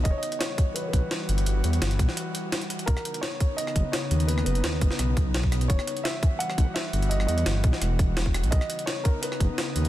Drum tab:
HH |x-xxx-x-x-x-x-xx|x-xxxxx-x-x-xxxx|x-xxx-x-x-x-x-xx|x-xxx-x-x-x-x-xx|
SD |----o-------o---|----o--o----o---|-r--o----r--o---|-r--o--or---o-r-|
BD |o-----o---o-----|------o---------|o-----o---o-----|------o---o--o--|

HH |x-xxx-x-x-x-x-xx|x-xxx-x-x-x-x-xx|x-xxx-x-x-x-x-xx|
SD |-r--o----r--o---|-r--o--or---o-r-|-r--o----r--o---|
BD |o-----o---o-----|------o---o--o--|o-----o---o-----|